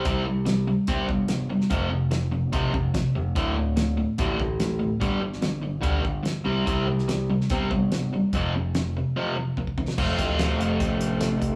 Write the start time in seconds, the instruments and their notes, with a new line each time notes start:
0.05 picked electric bass C2, overdriven electric guitar C3 G3 C4, kick, closed hi-hat
0.25 overdriven electric guitar C3 G3
0.46 overdriven electric guitar C3 G3, snare, closed hi-hat
0.68 overdriven electric guitar C3 G3
0.87 picked electric bass G1, overdriven electric guitar C3 G3 C4, kick, closed hi-hat
1.08 picked electric bass G1, overdriven electric guitar C3 G3, kick
1.28 overdriven electric guitar C3 G3, snare, closed hi-hat
1.49 overdriven electric guitar C3 G3
1.61 snare
1.70 picked electric bass F1, overdriven electric guitar F2 C3 F3, kick, closed hi-hat
1.90 overdriven electric guitar F2 C3
2.11 overdriven electric guitar F2 C3, snare, closed hi-hat
2.31 overdriven electric guitar F2 C3
2.52 picked electric bass C2, overdriven electric guitar F2 C3 F3, kick, closed hi-hat
2.74 picked electric bass F1, overdriven electric guitar F2 C3, kick
2.94 overdriven electric guitar F2 C3, kick, snare, closed hi-hat
3.15 picked electric bass F1, overdriven electric guitar F2 C3
3.35 picked electric bass D1, overdriven electric guitar D2 A2 D3, kick, closed hi-hat
3.56 overdriven electric guitar D2 A2
3.77 overdriven electric guitar D2 A2, snare, closed hi-hat
3.97 overdriven electric guitar D2 A2
4.18 picked electric bass A1, overdriven electric guitar D2 A2 D3, kick, closed hi-hat
4.40 picked electric bass A1, overdriven electric guitar D2 A2, kick
4.60 overdriven electric guitar D2 A2, snare, closed hi-hat
4.79 overdriven electric guitar D2 A2
5.00 picked electric bass G1, overdriven electric guitar G2 D3 G3, kick, closed hi-hat
5.21 overdriven electric guitar G2 D3
5.33 snare
5.42 overdriven electric guitar G2 D3, snare, closed hi-hat
5.62 overdriven electric guitar G2 D3
5.81 picked electric bass D2, overdriven electric guitar G2 D3 G3, kick, closed hi-hat
6.03 picked electric bass G1, overdriven electric guitar G2 D3, kick
6.23 overdriven electric guitar G2 D3, snare, closed hi-hat
6.45 picked electric bass C2, overdriven electric guitar C3 G3 C4
6.65 picked electric bass C2, overdriven electric guitar C3 G3 C4, kick, closed hi-hat
6.88 overdriven electric guitar C3 G3
6.99 snare
7.08 overdriven electric guitar C3 G3, snare, closed hi-hat
7.30 overdriven electric guitar C3 G3
7.41 snare
7.50 picked electric bass G1, overdriven electric guitar C3 G3 C4, kick, closed hi-hat
7.71 picked electric bass G1, overdriven electric guitar C3 G3, kick
7.92 overdriven electric guitar C3 G3, snare, closed hi-hat
8.13 overdriven electric guitar C3 G3
8.33 picked electric bass F1, overdriven electric guitar F2 C3 F3, kick, closed hi-hat
8.55 overdriven electric guitar F2 C3
8.75 overdriven electric guitar F2 C3, snare, closed hi-hat
8.97 overdriven electric guitar F2 C3
9.16 overdriven electric guitar F2 C3 F3
9.36 overdriven electric guitar F2 C3
9.57 overdriven electric guitar F2 C3, kick
9.67 kick
9.78 overdriven electric guitar F2 C3, kick
9.88 snare
9.96 picked electric bass F1, overdriven electric guitar F2 C3 F3 A3 C4 F4, steel-string acoustic guitar F3 A3 C4 F4 A4, kick, crash
10.08 steel-string acoustic guitar C4 F4 A4
10.17 picked electric bass D1, steel-string acoustic guitar A3 C4 F4 A4, kick, closed hi-hat
10.28 steel-string acoustic guitar C4 F4 A4
10.37 steel-string acoustic guitar F3 A3 C4 F4 A4, snare, closed hi-hat
10.58 picked electric bass F1, steel-string acoustic guitar A3 C4 F4 A4, closed hi-hat
10.80 picked electric bass A1, kick, closed hi-hat
10.88 steel-string acoustic guitar C4 F4 A4
11.00 steel-string acoustic guitar A3 C4 F4 A4, closed hi-hat
11.09 steel-string acoustic guitar C4 F4 A4
11.19 steel-string acoustic guitar F3 A3 C4 F4 A4, snare, closed hi-hat
11.39 picked electric bass F1, steel-string acoustic guitar A3 C4 F4 A4, kick, closed hi-hat
11.51 steel-string acoustic guitar F4 A4